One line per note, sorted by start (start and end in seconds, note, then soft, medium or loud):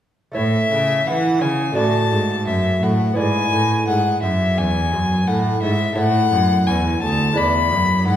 0.32 1.70 A3 soft
0.32 1.71 E4 soft
0.32 1.72 C#5 soft
0.36 0.69 A2 medium
0.36 0.68 A2 soft
0.36 1.08 E5 medium
0.72 1.06 C#3 medium
0.72 1.03 C#3 medium
1.07 1.43 E3 medium
1.07 1.38 E3 medium
1.07 1.43 F#5 medium
1.41 1.73 C#3 medium
1.41 1.76 C#3 medium
1.41 1.76 G#5 medium
1.72 3.11 A3 soft
1.72 3.12 F#4 soft
1.72 3.12 D5 medium
1.76 2.13 A2 medium
1.76 2.08 A2 medium
1.76 2.46 A5 medium
2.11 2.48 G#2 medium
2.11 2.44 G#2 medium
2.47 2.81 F#2 medium
2.47 2.79 F#2 medium
2.47 2.85 E5 medium
2.82 3.16 A2 medium
2.82 3.14 A2 medium
2.82 3.17 F#5 medium
3.13 3.51 G#2 medium
3.13 5.92 B3 soft
3.13 5.92 E4 soft
3.13 5.93 D5 soft
3.17 3.49 G#2 soft
3.17 3.86 G#5 medium
3.52 3.86 A2 medium
3.52 3.84 A2 medium
3.87 4.21 G#2 medium
3.87 4.19 G#2 medium
3.87 4.22 F#5 medium
4.22 4.59 F#2 medium
4.22 4.55 F#2 medium
4.22 4.60 E5 medium
4.58 4.94 E2 medium
4.58 4.89 E2 medium
4.58 5.29 G#5 medium
4.92 5.26 F#2 medium
4.92 5.24 F#2 medium
5.27 5.61 A2 medium
5.27 5.59 A2 medium
5.27 5.62 F#5 medium
5.62 5.97 G#2 medium
5.62 5.94 G#2 medium
5.62 5.97 E5 medium
5.93 7.31 A3 soft
5.93 7.32 E4 soft
5.93 7.32 C#5 soft
5.97 6.32 A2 medium
5.97 6.29 A2 medium
5.97 6.69 F#5 loud
6.32 6.66 F#2 medium
6.32 6.64 F#2 medium
6.67 7.01 E2 medium
6.67 6.99 E2 medium
6.67 7.02 G#5 medium
7.02 7.36 D2 medium
7.02 7.34 D2 medium
7.02 7.39 A5 medium
7.33 7.73 E2 medium
7.33 7.69 G#3 soft
7.33 8.16 E4 medium
7.33 8.16 D5 medium
7.37 7.68 E2 medium
7.37 8.07 B5 medium
7.71 8.08 F#2 medium
7.71 8.03 F#2 medium
8.07 8.16 G#2 medium
8.07 8.16 F#5 medium